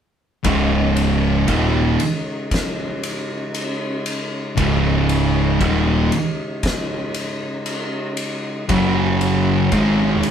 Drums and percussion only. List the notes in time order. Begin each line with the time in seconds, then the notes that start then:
0.44 kick, ride
0.97 ride
1.48 kick, ride
2.00 ride
2.51 kick, snare, ride
3.03 ride
3.54 ride
4.06 ride
4.57 kick, ride
5.09 ride
5.61 kick, ride
6.12 ride
6.63 kick, snare, ride
7.14 ride
7.66 ride
8.17 ride
8.69 kick, ride
9.21 ride
9.72 kick, ride
10.23 ride